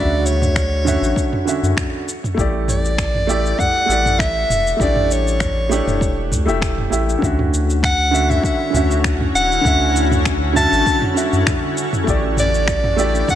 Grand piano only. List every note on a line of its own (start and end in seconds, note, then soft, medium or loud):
0.00 2.09 C#3 medium
0.00 0.85 D3 medium
0.00 0.86 C#4 medium
0.00 0.87 F#4 medium
0.00 0.88 E5 loud
0.85 1.42 D3 medium
0.85 1.43 C#4 medium
0.85 1.44 F#4 medium
0.85 1.44 E5 loud
1.45 2.05 D3 medium
1.45 2.05 C#4 medium
1.45 2.06 F#4 medium
1.45 2.06 E5 medium
2.34 3.23 A3 medium
2.34 3.24 E4 medium
2.39 3.25 G4 medium
2.39 3.26 D5 medium
3.27 3.84 A3 medium
3.27 3.85 E4 medium
3.27 3.86 G4 medium
3.27 3.86 D5 loud
3.86 4.75 A3 medium
3.86 4.76 E4 medium
3.86 4.77 G4 medium
3.92 4.78 D5 medium
4.77 5.66 A3 medium
4.77 5.67 E4 medium
4.81 5.69 D4 loud
4.81 5.68 G4 medium
5.69 6.27 A3 medium
5.69 6.29 D4 loud
5.69 6.28 E4 medium
5.69 6.28 G4 medium
6.46 6.88 A3 loud
6.46 6.88 E4 medium
6.46 6.89 G4 medium
6.46 6.89 E5 loud
6.90 7.18 A3 medium
6.90 7.18 E4 medium
6.90 7.19 G4 medium
6.90 7.19 E5 medium
7.18 8.08 D3 medium
7.18 8.09 C#4 medium
7.18 8.10 F#4 medium
7.24 8.11 E5 medium
8.11 8.69 D3 medium
8.11 8.70 C#4 medium
8.11 8.70 F#4 medium
8.11 8.71 E5 loud
8.70 9.60 D3 medium
8.70 9.60 C#4 medium
8.75 9.62 F#4 medium
8.75 9.63 E5 medium
9.61 10.50 D3 medium
9.61 10.51 C#4 medium
9.61 10.52 F#4 medium
9.67 10.53 E5 loud
10.53 11.12 D3 medium
10.53 11.12 C#4 medium
10.53 11.12 F#4 medium
10.53 11.13 E5 loud
11.14 11.74 D3 medium
11.14 11.75 C#4 medium
11.14 11.75 F#4 medium
11.14 11.76 E5 medium
12.04 12.93 A3 medium
12.04 12.94 E4 medium
12.04 12.95 G4 medium
12.10 12.96 D5 medium
12.96 13.35 A3 loud
12.96 13.35 E4 medium
12.96 13.35 G4 medium
12.96 13.35 D5 loud